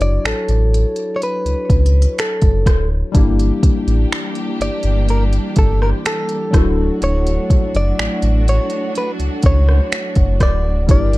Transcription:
Already playing: synth keys F#3 D4 E4 F#4 C#5
0.00 sub bass F#1, clean electric guitar D5, closed hi-hat
0.24 sub bass A1, clean electric guitar A4, finger snap
0.48 sub bass A1, closed hi-hat
0.74 closed hi-hat
0.96 closed hi-hat
1.16 clean electric guitar C#5
1.22 clean electric guitar B4, closed hi-hat
1.45 sub bass C#2, closed hi-hat
1.70 sub bass C#2, kick, closed hi-hat
1.86 closed hi-hat
2.02 closed hi-hat
2.19 clean electric guitar A4, finger snap, closed hi-hat
2.42 sub bass F#1, kick, closed hi-hat
2.66 sub bass D1, kick, cross-stick, closed hi-hat
3.12 sub bass G1, string section E3 G3 A#3 D4 G4, synth keys G3 D4 E4, kick, closed hi-hat
3.17 synth keys A#3 G4
3.39 closed hi-hat
3.63 kick, closed hi-hat
3.87 sub bass A1, closed hi-hat
4.12 finger snap
4.35 closed hi-hat
4.60 sub bass G1, clean electric guitar D5, closed hi-hat
4.83 sub bass G1, closed hi-hat
5.09 clean electric guitar A#4, closed hi-hat
5.33 closed hi-hat
5.56 sub bass G1, clean electric guitar A4, kick, closed hi-hat
5.82 clean electric guitar A#4, cross-stick
6.06 clean electric guitar A4, finger snap, closed hi-hat
6.29 closed hi-hat
6.51 sub bass D1, synth keys F#3 D4 E4, string section F#3 A3 D4 F#4, kick, cross-stick, closed hi-hat
6.56 synth keys F#4 A4
7.02 sub bass D1, clean electric guitar C#5, closed hi-hat
7.27 closed hi-hat
7.50 kick, closed hi-hat
7.75 sub bass F#1, clean electric guitar D5, closed hi-hat
7.99 sub bass A1, finger snap
8.22 sub bass A1, closed hi-hat
8.48 clean electric guitar C#5, closed hi-hat
8.70 closed hi-hat
8.95 clean electric guitar B4, closed hi-hat
9.19 sub bass C#2, closed hi-hat
9.43 sub bass C#2, clean electric guitar C#5, kick, closed hi-hat
9.69 cross-stick
9.92 finger snap, closed hi-hat
10.15 sub bass F#1, kick, closed hi-hat
10.40 sub bass D1, clean electric guitar D5, kick, cross-stick, closed hi-hat
10.86 sub bass G1, string section E3 G3 A#3 D4 G4, synth keys G3 D4 E4, kick, closed hi-hat
10.91 synth keys G4 A#4, clean electric guitar D5
11.13 closed hi-hat

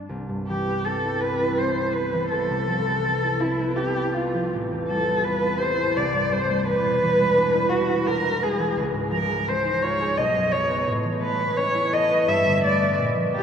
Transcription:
Already playing: harp G2 F3 A3 C4 D4
0.09 harp C2
0.29 harp G2
0.48 harp E3, cello G4
0.68 harp B3
0.85 harp C4, cello A4
1.04 harp E4
1.21 harp C4, cello B4
1.42 harp E4
1.58 harp C4, cello C5
1.78 harp E4
1.93 harp B3, cello B4
2.13 harp E3
2.30 harp C2, cello A4
2.50 harp C3
2.68 harp F3
2.87 harp B3
3.04 harp C4
3.24 harp E4
3.40 harp C4, cello E4
3.60 harp B3
3.76 harp C4, cello G4
3.97 harp E4
4.14 harp B3, cello F4
4.34 harp F3
4.53 harp A1
4.72 harp E2
4.88 harp G3, cello A4
5.08 harp B3
5.24 harp C4, cello B4
5.42 harp E4
5.58 harp G4, cello C5
5.77 harp E4
5.96 harp C2, cello D5
6.14 harp G2
6.31 harp G3, cello C5
6.49 harp A3
6.66 harp E2, cello B4
6.85 harp B2
7.02 harp E3
7.19 harp G#3
7.36 harp D4
7.55 harp E4
7.69 harp D4, cello F#4
7.89 harp E4
8.06 harp D4, cello A#4
8.24 harp E4
8.42 harp G#3, cello G#4
8.59 harp E3
8.77 harp C#2
8.93 harp G#2
9.11 harp F3, cello A#4
9.29 harp G#3
9.48 harp C#4, cello C5
9.64 harp D#4
9.82 harp F4, cello C#5
10.02 harp G#4
10.18 harp B1, cello D#5
10.36 harp F#2
10.52 harp F#3, cello C#5
10.69 harp B3
10.88 harp A2
11.04 harp E3
11.22 harp A3, cello B4
11.40 harp B3
11.57 harp C#4, cello C#5
11.75 harp E4
11.93 harp A4, cello D#5
12.11 harp B4
12.27 harp G2, cello E5
12.46 harp D3
12.63 harp A3, cello D5
12.81 harp B3
12.99 harp A#2
13.16 harp F3
13.34 harp A#3, cello G4

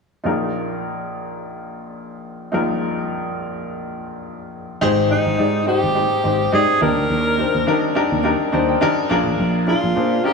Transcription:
0.24 grand piano A#1 A#2 D#4 F4 G#4 A#4
2.52 grand piano A#1 A#2 D#4 F4 G#4 A#4
4.81 fretless electric bass G#1, grand piano G#2 D#4 G4 G#4 C5
5.09 grand piano D#4 G4 G#4 C5, alto saxophone D#4
5.26 fretless electric bass G#1
5.38 fretless electric bass G#2, grand piano D#4 G4 G#4 D5
5.66 grand piano D#4 G4 G#4 C5, alto saxophone G4
5.83 fretless electric bass G#1
5.95 grand piano D#4 G4 G#4 C5
6.24 fretless electric bass G#1, grand piano D#4 G4 G#4 C5
6.52 fretless electric bass G#2, grand piano D#4 G4 G#4 D5, alto saxophone G#4
6.81 fretless electric bass D#2, grand piano D#3 D4 D#4 G4 A#4, alto saxophone A#4
6.97 fretless electric bass D2
7.10 fretless electric bass D#2
7.38 grand piano D4 D#4 G4 C5
7.54 fretless electric bass D#2
7.67 fretless electric bass D#3, grand piano D4 D#4 G4 A#4
7.95 grand piano D4 D#4 G4 A#4
8.12 fretless electric bass D#2
8.23 grand piano D4 D#4 G4 A#4
8.52 fretless electric bass D#2, grand piano D4 D#4 G4 C5 A#5
8.69 grand piano G5
8.81 fretless electric bass D#3, grand piano D4 D#4 G4 A#4 G#5
9.10 fretless electric bass A#1, grand piano A#2 D4 F4 G#4 A#4
9.26 fretless electric bass A1
9.39 fretless electric bass A#1
9.67 grand piano D4 F4 G#4 A#4, alto saxophone F4
9.83 fretless electric bass A#1
9.95 fretless electric bass A#2, grand piano D4 F4 G#4 C5
10.24 grand piano D4 F4 G#4 A#4, alto saxophone G4

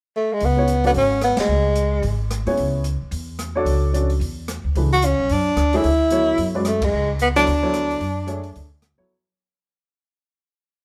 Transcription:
0.16 tenor saxophone A3
0.33 tenor saxophone G#3
0.41 upright bass C#2, open hi-hat
0.45 tenor saxophone B3
0.57 grand piano B3 C#4 E4 G#4 C#5
0.68 closed hi-hat
0.84 tenor saxophone B3, grand piano C#4 D4 F#4 A4 D5, open hi-hat
0.94 upright bass G#1, tenor saxophone C#4, open hi-hat
1.22 tenor saxophone B3, cross-stick, closed hi-hat
1.37 tenor saxophone G#3, muted upright bass stroke, snare, ride
1.48 upright bass C#2
1.76 closed hi-hat
2.02 upright bass G#1, open hi-hat
2.31 cross-stick, closed hi-hat
2.46 upright bass G#2, grand piano B3 C#4 E4 G#4 C#5, open hi-hat
2.57 upright bass C#2, open hi-hat
2.84 closed hi-hat
3.02 muted upright bass stroke
3.11 upright bass E2, open hi-hat
3.39 cross-stick, closed hi-hat
3.55 grand piano D4 F#4 A4 C#5 D5
3.65 upright bass C#2, open hi-hat
3.94 grand piano C#4 D4 F#4 A4 D5, closed hi-hat
4.10 open hi-hat
4.20 upright bass E2, open hi-hat
4.48 cross-stick, closed hi-hat
4.64 upright bass D2
4.75 upright bass C#2, grand piano E3 A3 D4 G#4 B4, open hi-hat
4.93 tenor saxophone F#4
5.02 tenor saxophone C#4, closed hi-hat
5.19 upright bass B1
5.29 upright bass F#2, tenor saxophone D4, open hi-hat
5.56 upright bass D2, cross-stick, closed hi-hat
5.73 grand piano A3 D4 G#4 C#5 E5, tenor saxophone E4, open hi-hat
5.84 upright bass D2, open hi-hat
6.10 grand piano F#3 B3 E4 A4 C#5, closed hi-hat
6.38 upright bass F#2, open hi-hat
6.55 grand piano G#3 C#4 F#4 B4 D5
6.65 tenor saxophone A3, cross-stick, closed hi-hat
6.82 tenor saxophone G#3, kick, ride
6.93 upright bass C#2
7.19 tenor saxophone B3, closed hi-hat
7.36 grand piano F#3 B3 E4 A4 C#5, tenor saxophone D4, open hi-hat
7.47 upright bass D2, open hi-hat
7.62 grand piano F#3 B3 E4 A4 C#5
7.74 cross-stick, closed hi-hat
7.90 open hi-hat
8.01 upright bass F#2, open hi-hat
8.27 grand piano A3 D4 G#4 C#5 E5, closed hi-hat
8.44 open hi-hat
8.56 upright bass D2, open hi-hat
8.82 cross-stick, closed hi-hat
8.98 grand piano F#3 B3 E4 A4 C#5, muted upright bass stroke

